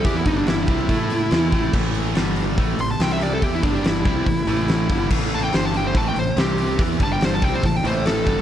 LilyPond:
<<
  \new Staff \with { instrumentName = "Lead electric guitar" } { \time 4/4 \key g \lydian \tempo 4 = 142 g'16 e'16 dis'16 d'16 e'2. | r2 r8 c'''16 a''16 g''16 e''16 d''16 a'16 | g'16 e'16 d'16 d'16 e'2. | r8 a''16 g''16 c''16 a''16 g''16 c''16 a''16 g''16 c''8 g'4 |
r8 a''16 g''16 c''16 a''16 g''16 c''16 a''16 g''16 c''8 a'4 | }
  \new Staff \with { instrumentName = "Overdriven electric guitar" } { \clef bass \time 4/4 \key g \lydian <e b e'>8 <g, d g>4 <c g c'>8 <a e' a'>4 <e b e'>8 <a, e a>8 | <a, e a>4 <g, d g>4 <a, e a>8 <a, e>8 <c g c'>4 | <e b e'>8 <g, d g>4 <c g c'>8 <a, e>8 <a, e a>4 <g, d g>8 | <a, e a>4 <g, d g>4 <a, e a>8 <a, e>8 <c g c'>4 |
<e b e'>8 <g, d g>4 <c g c'>8 <a, e>8 <a, e a>4 <g, d g>8 | }
  \new Staff \with { instrumentName = "Fingered electric bass" } { \clef bass \time 4/4 \key g \lydian e,8 g,,4 c,8 a,4 e,8 a,,8 | a,,4 g,,4 a,,8 a,,8 c,4 | e,8 g,,4 c,8 a,,8 a,,4 g,,8 | a,,4 g,,4 a,,8 a,,8 c,4 |
e,8 g,,4 c,8 a,,8 a,,4 g,,8 | }
  \new DrumStaff \with { instrumentName = "Drums" } \drummode { \time 4/4 <hho bd>8 <hho bd>8 <hho sn>8 <hho bd>8 <hho bd>8 hho8 <hho sn>8 <hho bd>8 | <cymc bd>8 hho8 <hho sn>8 hho8 <hho bd>8 hho8 <hho sn>8 hho8 | <hho bd>8 <hho bd>8 <hho sn>8 <hho bd>8 <hho bd>8 hho8 <hho sn>8 <hho bd>8 | <cymc bd>8 hho8 <hho sn>8 hho8 <hho bd>8 hho8 <hho sn>8 hho8 |
<hho bd>8 <hho bd>8 <hho sn>8 <hho bd>8 <hho bd>8 hho8 <hho sn>8 <hho bd>8 | }
>>